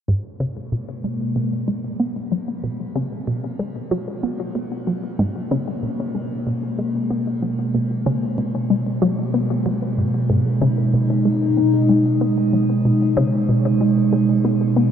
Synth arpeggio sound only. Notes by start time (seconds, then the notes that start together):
0.08 G#2
0.40 C#3
0.72 B2
1.04 G#3
1.36 B2
1.68 G#3
2.00 B3
2.32 F#3
2.64 B2
2.96 C#3
3.27 B2
3.59 G#3
3.91 F#3
4.23 B3
4.55 B3
4.87 F#3
5.19 G#2
5.51 C#3
5.83 B2
6.15 G#3
6.47 B2
6.79 G#3
7.11 B3
7.42 F#3
7.74 B2
8.06 C#3
8.38 B2
8.70 G#3
9.02 F#3
9.34 B3
9.66 F#3
9.98 G#2
10.30 G#2
10.62 C#3
10.94 B2
11.25 G#3
11.57 B2
11.89 G#3
12.21 B3
12.53 F#3
12.85 B2
13.17 C#3
13.49 B2
13.81 G#3
14.13 G#3
14.45 B3
14.76 B3